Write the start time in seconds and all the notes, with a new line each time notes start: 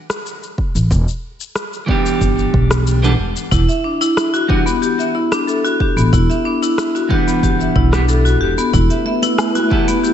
0.10 cross-stick, shaker
0.26 shaker
0.43 shaker
0.58 kick
0.75 A1, shaker
0.91 E1, kick, shaker
1.08 shaker
1.40 shaker
1.55 cross-stick, shaker
1.73 shaker
1.86 E3 G3 B3 D4, kick
1.90 G4
2.06 shaker
2.21 G1, kick, shaker
2.39 shaker
2.54 B1, kick
2.71 cross-stick, shaker
2.87 shaker
3.02 E3 G3 B3 D4 A4, shaker
3.19 E1
3.36 shaker
3.51 E1 E4, kick, shaker
3.69 E5, shaker
3.84 D4
4.01 E4, shaker
4.17 E4, cross-stick, shaker
4.34 F#4, shaker
4.48 E3 G3 B3 D4 F#4 G4, kick
4.66 B3, shaker
4.82 G4, shaker
4.99 E5, shaker
5.15 E4
5.32 D4, cross-stick, shaker
5.47 A4, shaker
5.65 F#4, shaker
5.80 G4, kick
5.96 A1 B3, shaker
6.13 E1 E4, kick, shaker
6.30 E5, shaker
6.45 D4
6.63 E4, shaker
6.78 E4, cross-stick, shaker
6.95 F#4, shaker
7.09 E3 G3 B3 D4 G4, kick
7.28 B3, shaker
7.43 G1 G4, kick, shaker
7.60 E5, shaker
7.75 B1 E4, kick
7.92 E3 G3 B3 D4 G4, cross-stick, shaker
8.09 A4, shaker
8.25 F#4, shaker
8.41 E1 G4
8.58 B3, shaker
8.73 E1 A3 B3 E4 B4, kick, shaker
8.90 E5, open hi-hat, shaker
9.05 E5, high conga
9.22 E4, open hi-hat, muted conga, high conga, shaker
9.38 E4, cross-stick, low woodblock, shaker
9.55 F#4, open hi-hat, muted conga, high conga, shaker
9.70 E3 A3 B3 E4 G4 A4, kick
9.88 B3, open hi-hat, muted conga, shaker
10.04 G4, shaker